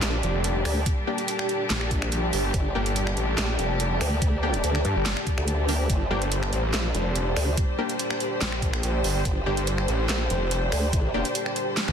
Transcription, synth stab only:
1.07 1.18 A#3 medium
1.07 1.18 D4 medium
1.07 1.18 G4 loud
2.75 2.86 A#3 medium
2.75 2.86 D4 medium
2.75 2.86 G4 loud
4.43 4.54 A#3 medium
4.43 4.54 D4 medium
4.43 4.54 G4 medium
5.69 6.08 A#3 medium
5.69 6.08 D4 medium
5.69 6.08 G4 loud
6.11 6.21 A#3 medium
6.11 6.21 D4 medium
6.11 6.21 G4 medium
7.78 7.89 A#3 medium
7.78 7.89 D4 medium
7.78 7.89 G4 loud
9.46 9.57 A#3 medium
9.46 9.57 D4 medium
9.46 9.57 G4 loud
11.14 11.25 A#3 medium
11.14 11.25 D4 medium
11.14 11.25 G4 loud

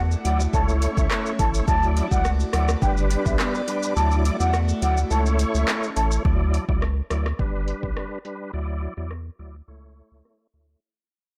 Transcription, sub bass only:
0.00 0.16 E2 medium
0.25 0.47 D2 medium
0.54 0.88 C#2 loud
0.97 1.08 C#2 medium
1.39 1.62 A1 loud
1.68 2.02 D2 loud
2.11 2.44 C#2 medium
2.54 2.76 D2 medium
2.82 3.16 G1 loud
3.26 3.36 B1 medium
3.96 4.31 D2 loud
4.40 4.73 E2 medium
4.82 5.05 D2 medium
5.11 5.45 C#2 loud
5.55 5.65 C#2 medium
5.97 6.19 A1 loud
6.25 6.59 D2 loud
6.69 7.02 C#2 medium
7.11 7.33 D2 medium
7.39 7.74 G1 medium
7.83 7.94 B1 medium
8.54 8.88 D2 loud
8.97 9.30 E2 medium
9.39 9.62 D2 medium
9.68 10.02 C#2 loud
10.12 10.22 C#2 medium
10.54 10.76 D2 medium

